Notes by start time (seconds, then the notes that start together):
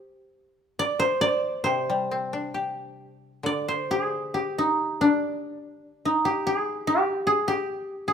Already playing: G4 C5
0.79 D5
0.99 C5
1.21 D5
1.64 C3 C5
1.90 G3
2.11 C4
2.33 D4
2.54 G4
3.43 D3 D5
3.68 C5
3.91 G#4
4.34 G4
4.58 D#4
5.01 D4
6.05 D#4
6.25 G4
6.47 G#4
6.87 G4
7.27 G#4
7.48 G4
8.08 G#4